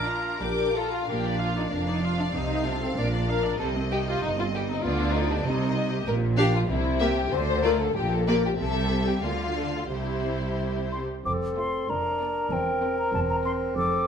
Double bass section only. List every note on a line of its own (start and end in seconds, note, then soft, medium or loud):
0.00 0.30 A#1 soft
0.41 0.97 A#1 soft
1.08 1.61 A#1 soft
1.72 2.24 F1 soft
2.35 2.87 C2 soft
2.97 3.49 A#1 soft
3.60 4.12 C2 soft
4.23 4.74 G1 medium
4.83 5.35 D2 medium
5.45 5.96 C2 medium
6.06 6.58 A#1 medium
6.69 7.21 C2 medium
7.32 7.84 D2 medium
7.95 8.48 A#1 medium
8.59 9.20 C2 soft
9.24 9.91 D2 soft
9.91 11.03 C2 soft
11.25 11.76 F1 soft
11.89 12.39 F1 soft
12.52 13.01 E1 soft
13.14 13.63 E1 soft
13.76 14.07 F1 medium